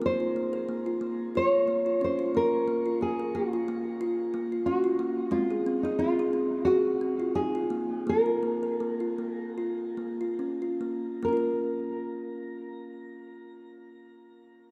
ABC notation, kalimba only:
X:1
M:4/4
L:1/16
Q:"Swing 16ths" 1/4=88
K:Bbm
V:1 name="Kalimba"
z F B, B B, F B,2 F2 B, F D F B,2 | z F B, B B, F B,2 F2 B, F D F B,2 | C A C A C A C2 A2 C F E F B,2 | B, F B, B B, F B,2 F2 B, F D F B,2 |
z16 |]
V:2 name="Kalimba"
B,16 | B,16 | A,16 | z16 |
[B,DFB]16 |]